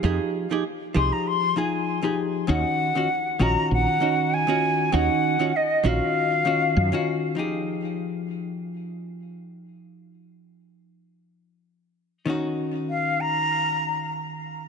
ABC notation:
X:1
M:4/4
L:1/16
Q:"Swing 16ths" 1/4=98
K:Fphr
V:1 name="Flute"
z6 c' b c'2 a4 z2 | g6 b2 g4 a4 | g4 e2 f8 z2 | z16 |
z16 | z4 f2 b6 z4 |]
V:2 name="Hollow-body jazz guitar"
[F,E=GA]3 [F,EGA] z2 [F,EGA]4 [F,EFA]3 [F,EGA]3 | [E,DEG]3 [E,DFG] z2 [E,DFG]4 [E,DEG]3 [E,DFG]3 | [E,DEG]3 [E,DFG] z2 [E,DFG]4 [E,DFG]3 [E,DFG]3 | [F,E=GA]16- |
[F,E=GA]16 | [E,DEG]16 |]
V:3 name="Fretless electric bass" clef=bass
F,,2 z4 C,,2 z8 | E,,2 z4 B,,,2 B,,,2 z6 | E,,2 z4 B,,,2 z4 G,,2 z2 | z16 |
z16 | z16 |]